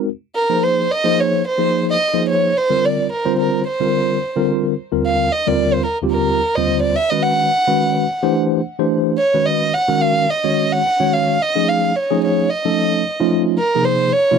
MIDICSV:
0, 0, Header, 1, 3, 480
1, 0, Start_track
1, 0, Tempo, 552486
1, 295, Time_signature, 4, 2, 24, 8
1, 12498, End_track
2, 0, Start_track
2, 0, Title_t, "Violin"
2, 0, Program_c, 0, 40
2, 311, Note_on_c, 0, 70, 93
2, 548, Note_on_c, 0, 72, 85
2, 561, Note_off_c, 0, 70, 0
2, 795, Note_on_c, 0, 75, 99
2, 808, Note_off_c, 0, 72, 0
2, 1045, Note_on_c, 0, 73, 88
2, 1058, Note_off_c, 0, 75, 0
2, 1271, Note_off_c, 0, 73, 0
2, 1280, Note_on_c, 0, 72, 88
2, 1615, Note_off_c, 0, 72, 0
2, 1658, Note_on_c, 0, 75, 90
2, 1969, Note_off_c, 0, 75, 0
2, 1994, Note_on_c, 0, 73, 84
2, 2234, Note_on_c, 0, 72, 95
2, 2247, Note_off_c, 0, 73, 0
2, 2478, Note_on_c, 0, 74, 83
2, 2491, Note_off_c, 0, 72, 0
2, 2709, Note_off_c, 0, 74, 0
2, 2714, Note_on_c, 0, 70, 76
2, 2931, Note_off_c, 0, 70, 0
2, 2949, Note_on_c, 0, 70, 69
2, 3168, Note_off_c, 0, 70, 0
2, 3190, Note_on_c, 0, 72, 72
2, 3871, Note_off_c, 0, 72, 0
2, 4401, Note_on_c, 0, 77, 80
2, 4620, Note_on_c, 0, 75, 83
2, 4633, Note_off_c, 0, 77, 0
2, 4758, Note_on_c, 0, 74, 84
2, 4771, Note_off_c, 0, 75, 0
2, 4979, Note_on_c, 0, 72, 80
2, 4992, Note_off_c, 0, 74, 0
2, 5068, Note_off_c, 0, 72, 0
2, 5073, Note_on_c, 0, 70, 79
2, 5188, Note_off_c, 0, 70, 0
2, 5314, Note_on_c, 0, 70, 86
2, 5694, Note_on_c, 0, 75, 91
2, 5707, Note_off_c, 0, 70, 0
2, 5923, Note_off_c, 0, 75, 0
2, 5929, Note_on_c, 0, 74, 94
2, 6047, Note_on_c, 0, 76, 110
2, 6060, Note_off_c, 0, 74, 0
2, 6169, Note_on_c, 0, 75, 90
2, 6182, Note_off_c, 0, 76, 0
2, 6277, Note_on_c, 0, 78, 99
2, 6290, Note_off_c, 0, 75, 0
2, 7250, Note_off_c, 0, 78, 0
2, 7980, Note_on_c, 0, 73, 93
2, 8219, Note_on_c, 0, 75, 90
2, 8232, Note_off_c, 0, 73, 0
2, 8460, Note_on_c, 0, 78, 91
2, 8473, Note_off_c, 0, 75, 0
2, 8701, Note_on_c, 0, 77, 89
2, 8715, Note_off_c, 0, 78, 0
2, 8949, Note_on_c, 0, 75, 82
2, 8962, Note_off_c, 0, 77, 0
2, 9313, Note_on_c, 0, 78, 92
2, 9326, Note_off_c, 0, 75, 0
2, 9674, Note_on_c, 0, 77, 85
2, 9687, Note_off_c, 0, 78, 0
2, 9923, Note_on_c, 0, 75, 96
2, 9936, Note_off_c, 0, 77, 0
2, 10154, Note_on_c, 0, 77, 84
2, 10167, Note_off_c, 0, 75, 0
2, 10392, Note_on_c, 0, 73, 82
2, 10405, Note_off_c, 0, 77, 0
2, 10626, Note_off_c, 0, 73, 0
2, 10637, Note_on_c, 0, 73, 76
2, 10855, Note_on_c, 0, 75, 74
2, 10868, Note_off_c, 0, 73, 0
2, 11577, Note_off_c, 0, 75, 0
2, 11803, Note_on_c, 0, 70, 91
2, 12029, Note_on_c, 0, 72, 88
2, 12043, Note_off_c, 0, 70, 0
2, 12274, Note_on_c, 0, 73, 100
2, 12287, Note_off_c, 0, 72, 0
2, 12498, Note_off_c, 0, 73, 0
2, 12498, End_track
3, 0, Start_track
3, 0, Title_t, "Tine electric piano"
3, 0, Program_c, 1, 4
3, 429, Note_on_c, 1, 63, 53
3, 430, Note_on_c, 1, 53, 60
3, 431, Note_on_c, 1, 58, 57
3, 435, Note_on_c, 1, 72, 69
3, 437, Note_on_c, 1, 68, 58
3, 748, Note_off_c, 1, 63, 0
3, 749, Note_off_c, 1, 53, 0
3, 749, Note_off_c, 1, 58, 0
3, 751, Note_off_c, 1, 72, 0
3, 752, Note_off_c, 1, 68, 0
3, 902, Note_on_c, 1, 58, 72
3, 902, Note_on_c, 1, 68, 70
3, 904, Note_on_c, 1, 53, 75
3, 908, Note_on_c, 1, 63, 68
3, 909, Note_on_c, 1, 72, 82
3, 1225, Note_off_c, 1, 58, 0
3, 1225, Note_off_c, 1, 68, 0
3, 1226, Note_off_c, 1, 53, 0
3, 1228, Note_off_c, 1, 63, 0
3, 1228, Note_off_c, 1, 72, 0
3, 1372, Note_on_c, 1, 58, 63
3, 1374, Note_on_c, 1, 53, 71
3, 1375, Note_on_c, 1, 63, 61
3, 1377, Note_on_c, 1, 68, 61
3, 1380, Note_on_c, 1, 72, 75
3, 1701, Note_off_c, 1, 58, 0
3, 1702, Note_off_c, 1, 53, 0
3, 1702, Note_off_c, 1, 63, 0
3, 1703, Note_off_c, 1, 68, 0
3, 1704, Note_off_c, 1, 72, 0
3, 1856, Note_on_c, 1, 53, 73
3, 1857, Note_on_c, 1, 63, 61
3, 1858, Note_on_c, 1, 68, 61
3, 1859, Note_on_c, 1, 58, 65
3, 1861, Note_on_c, 1, 72, 74
3, 2183, Note_off_c, 1, 53, 0
3, 2184, Note_off_c, 1, 58, 0
3, 2184, Note_off_c, 1, 63, 0
3, 2184, Note_off_c, 1, 68, 0
3, 2185, Note_off_c, 1, 72, 0
3, 2342, Note_on_c, 1, 55, 58
3, 2345, Note_on_c, 1, 50, 59
3, 2345, Note_on_c, 1, 60, 59
3, 2347, Note_on_c, 1, 70, 73
3, 2348, Note_on_c, 1, 65, 55
3, 2667, Note_off_c, 1, 55, 0
3, 2668, Note_off_c, 1, 50, 0
3, 2668, Note_off_c, 1, 60, 0
3, 2669, Note_off_c, 1, 65, 0
3, 2669, Note_off_c, 1, 70, 0
3, 2821, Note_on_c, 1, 55, 69
3, 2822, Note_on_c, 1, 60, 68
3, 2827, Note_on_c, 1, 72, 85
3, 2828, Note_on_c, 1, 65, 71
3, 2830, Note_on_c, 1, 50, 69
3, 3146, Note_off_c, 1, 55, 0
3, 3147, Note_off_c, 1, 60, 0
3, 3149, Note_off_c, 1, 72, 0
3, 3150, Note_off_c, 1, 65, 0
3, 3151, Note_off_c, 1, 50, 0
3, 3303, Note_on_c, 1, 55, 64
3, 3303, Note_on_c, 1, 60, 57
3, 3305, Note_on_c, 1, 50, 67
3, 3305, Note_on_c, 1, 70, 71
3, 3307, Note_on_c, 1, 65, 64
3, 3627, Note_off_c, 1, 60, 0
3, 3628, Note_off_c, 1, 50, 0
3, 3628, Note_off_c, 1, 55, 0
3, 3629, Note_off_c, 1, 65, 0
3, 3629, Note_off_c, 1, 70, 0
3, 3788, Note_on_c, 1, 60, 70
3, 3789, Note_on_c, 1, 50, 76
3, 3792, Note_on_c, 1, 65, 73
3, 3792, Note_on_c, 1, 70, 84
3, 3793, Note_on_c, 1, 55, 65
3, 4110, Note_off_c, 1, 60, 0
3, 4111, Note_off_c, 1, 50, 0
3, 4112, Note_off_c, 1, 65, 0
3, 4112, Note_off_c, 1, 70, 0
3, 4113, Note_off_c, 1, 55, 0
3, 4273, Note_on_c, 1, 50, 60
3, 4273, Note_on_c, 1, 65, 58
3, 4274, Note_on_c, 1, 55, 60
3, 4274, Note_on_c, 1, 60, 58
3, 4275, Note_on_c, 1, 39, 63
3, 4278, Note_on_c, 1, 70, 77
3, 4593, Note_off_c, 1, 50, 0
3, 4593, Note_off_c, 1, 60, 0
3, 4593, Note_off_c, 1, 65, 0
3, 4594, Note_off_c, 1, 39, 0
3, 4594, Note_off_c, 1, 55, 0
3, 4596, Note_off_c, 1, 70, 0
3, 4753, Note_on_c, 1, 55, 70
3, 4754, Note_on_c, 1, 50, 68
3, 4756, Note_on_c, 1, 39, 72
3, 4756, Note_on_c, 1, 60, 72
3, 4756, Note_on_c, 1, 70, 79
3, 4758, Note_on_c, 1, 65, 67
3, 5073, Note_off_c, 1, 55, 0
3, 5074, Note_off_c, 1, 50, 0
3, 5075, Note_off_c, 1, 39, 0
3, 5075, Note_off_c, 1, 60, 0
3, 5075, Note_off_c, 1, 70, 0
3, 5076, Note_off_c, 1, 65, 0
3, 5233, Note_on_c, 1, 39, 70
3, 5234, Note_on_c, 1, 65, 68
3, 5235, Note_on_c, 1, 50, 61
3, 5240, Note_on_c, 1, 55, 64
3, 5241, Note_on_c, 1, 60, 63
3, 5241, Note_on_c, 1, 67, 78
3, 5554, Note_off_c, 1, 39, 0
3, 5554, Note_off_c, 1, 50, 0
3, 5554, Note_off_c, 1, 65, 0
3, 5557, Note_off_c, 1, 55, 0
3, 5558, Note_off_c, 1, 60, 0
3, 5558, Note_off_c, 1, 67, 0
3, 5710, Note_on_c, 1, 50, 62
3, 5710, Note_on_c, 1, 72, 79
3, 5712, Note_on_c, 1, 60, 63
3, 5713, Note_on_c, 1, 55, 68
3, 5713, Note_on_c, 1, 65, 64
3, 5714, Note_on_c, 1, 39, 72
3, 6032, Note_off_c, 1, 50, 0
3, 6032, Note_off_c, 1, 72, 0
3, 6033, Note_off_c, 1, 55, 0
3, 6033, Note_off_c, 1, 60, 0
3, 6034, Note_off_c, 1, 39, 0
3, 6034, Note_off_c, 1, 65, 0
3, 6180, Note_on_c, 1, 56, 61
3, 6182, Note_on_c, 1, 61, 57
3, 6183, Note_on_c, 1, 71, 69
3, 6184, Note_on_c, 1, 66, 57
3, 6185, Note_on_c, 1, 51, 66
3, 6507, Note_off_c, 1, 56, 0
3, 6508, Note_off_c, 1, 61, 0
3, 6509, Note_off_c, 1, 66, 0
3, 6509, Note_off_c, 1, 71, 0
3, 6510, Note_off_c, 1, 51, 0
3, 6667, Note_on_c, 1, 51, 71
3, 6667, Note_on_c, 1, 61, 66
3, 6668, Note_on_c, 1, 56, 72
3, 6668, Note_on_c, 1, 71, 81
3, 6672, Note_on_c, 1, 66, 70
3, 6991, Note_off_c, 1, 51, 0
3, 6991, Note_off_c, 1, 56, 0
3, 6991, Note_off_c, 1, 61, 0
3, 6991, Note_off_c, 1, 71, 0
3, 6993, Note_off_c, 1, 66, 0
3, 7147, Note_on_c, 1, 67, 75
3, 7148, Note_on_c, 1, 52, 86
3, 7150, Note_on_c, 1, 62, 74
3, 7151, Note_on_c, 1, 57, 73
3, 7153, Note_on_c, 1, 72, 85
3, 7471, Note_off_c, 1, 52, 0
3, 7471, Note_off_c, 1, 67, 0
3, 7472, Note_off_c, 1, 62, 0
3, 7473, Note_off_c, 1, 57, 0
3, 7474, Note_off_c, 1, 72, 0
3, 7635, Note_on_c, 1, 52, 77
3, 7637, Note_on_c, 1, 67, 63
3, 7640, Note_on_c, 1, 72, 89
3, 7641, Note_on_c, 1, 62, 70
3, 7645, Note_on_c, 1, 57, 75
3, 7955, Note_off_c, 1, 52, 0
3, 7956, Note_off_c, 1, 67, 0
3, 7958, Note_off_c, 1, 62, 0
3, 7958, Note_off_c, 1, 72, 0
3, 7960, Note_off_c, 1, 57, 0
3, 8114, Note_on_c, 1, 56, 58
3, 8116, Note_on_c, 1, 51, 66
3, 8118, Note_on_c, 1, 61, 54
3, 8118, Note_on_c, 1, 66, 59
3, 8119, Note_on_c, 1, 71, 68
3, 8434, Note_off_c, 1, 56, 0
3, 8435, Note_off_c, 1, 51, 0
3, 8436, Note_off_c, 1, 61, 0
3, 8436, Note_off_c, 1, 66, 0
3, 8437, Note_off_c, 1, 71, 0
3, 8584, Note_on_c, 1, 66, 74
3, 8585, Note_on_c, 1, 51, 80
3, 8585, Note_on_c, 1, 56, 68
3, 8585, Note_on_c, 1, 70, 82
3, 8586, Note_on_c, 1, 61, 70
3, 8909, Note_off_c, 1, 66, 0
3, 8910, Note_off_c, 1, 51, 0
3, 8910, Note_off_c, 1, 56, 0
3, 8910, Note_off_c, 1, 61, 0
3, 8910, Note_off_c, 1, 70, 0
3, 9071, Note_on_c, 1, 51, 64
3, 9074, Note_on_c, 1, 56, 67
3, 9074, Note_on_c, 1, 66, 63
3, 9074, Note_on_c, 1, 73, 75
3, 9075, Note_on_c, 1, 61, 61
3, 9392, Note_off_c, 1, 51, 0
3, 9394, Note_off_c, 1, 56, 0
3, 9394, Note_off_c, 1, 66, 0
3, 9394, Note_off_c, 1, 73, 0
3, 9395, Note_off_c, 1, 61, 0
3, 9554, Note_on_c, 1, 66, 63
3, 9556, Note_on_c, 1, 51, 70
3, 9556, Note_on_c, 1, 61, 65
3, 9557, Note_on_c, 1, 56, 67
3, 9559, Note_on_c, 1, 73, 84
3, 9874, Note_off_c, 1, 66, 0
3, 9875, Note_off_c, 1, 51, 0
3, 9875, Note_off_c, 1, 56, 0
3, 9875, Note_off_c, 1, 61, 0
3, 9876, Note_off_c, 1, 73, 0
3, 10038, Note_on_c, 1, 57, 59
3, 10040, Note_on_c, 1, 61, 60
3, 10042, Note_on_c, 1, 63, 59
3, 10042, Note_on_c, 1, 68, 73
3, 10043, Note_on_c, 1, 53, 67
3, 10355, Note_off_c, 1, 57, 0
3, 10357, Note_off_c, 1, 61, 0
3, 10357, Note_off_c, 1, 63, 0
3, 10357, Note_off_c, 1, 68, 0
3, 10358, Note_off_c, 1, 53, 0
3, 10516, Note_on_c, 1, 68, 91
3, 10519, Note_on_c, 1, 57, 66
3, 10519, Note_on_c, 1, 61, 68
3, 10522, Note_on_c, 1, 63, 73
3, 10523, Note_on_c, 1, 53, 79
3, 10834, Note_off_c, 1, 68, 0
3, 10836, Note_off_c, 1, 57, 0
3, 10836, Note_off_c, 1, 61, 0
3, 10837, Note_off_c, 1, 63, 0
3, 10838, Note_off_c, 1, 53, 0
3, 10992, Note_on_c, 1, 61, 65
3, 10993, Note_on_c, 1, 53, 69
3, 10993, Note_on_c, 1, 63, 60
3, 10994, Note_on_c, 1, 57, 65
3, 10994, Note_on_c, 1, 69, 79
3, 11312, Note_off_c, 1, 53, 0
3, 11312, Note_off_c, 1, 61, 0
3, 11312, Note_off_c, 1, 63, 0
3, 11313, Note_off_c, 1, 57, 0
3, 11313, Note_off_c, 1, 69, 0
3, 11467, Note_on_c, 1, 63, 76
3, 11470, Note_on_c, 1, 65, 88
3, 11471, Note_on_c, 1, 53, 83
3, 11471, Note_on_c, 1, 61, 76
3, 11472, Note_on_c, 1, 57, 77
3, 11789, Note_off_c, 1, 63, 0
3, 11790, Note_off_c, 1, 65, 0
3, 11791, Note_off_c, 1, 53, 0
3, 11791, Note_off_c, 1, 57, 0
3, 11791, Note_off_c, 1, 61, 0
3, 11947, Note_on_c, 1, 68, 70
3, 11949, Note_on_c, 1, 48, 65
3, 11949, Note_on_c, 1, 53, 60
3, 11952, Note_on_c, 1, 58, 59
3, 11952, Note_on_c, 1, 63, 66
3, 12268, Note_off_c, 1, 68, 0
3, 12269, Note_off_c, 1, 48, 0
3, 12269, Note_off_c, 1, 53, 0
3, 12271, Note_off_c, 1, 58, 0
3, 12271, Note_off_c, 1, 63, 0
3, 12434, Note_on_c, 1, 63, 73
3, 12434, Note_on_c, 1, 65, 89
3, 12435, Note_on_c, 1, 48, 82
3, 12435, Note_on_c, 1, 53, 71
3, 12437, Note_on_c, 1, 58, 77
3, 12498, Note_off_c, 1, 48, 0
3, 12498, Note_off_c, 1, 53, 0
3, 12498, Note_off_c, 1, 58, 0
3, 12498, Note_off_c, 1, 63, 0
3, 12498, Note_off_c, 1, 65, 0
3, 12498, End_track
0, 0, End_of_file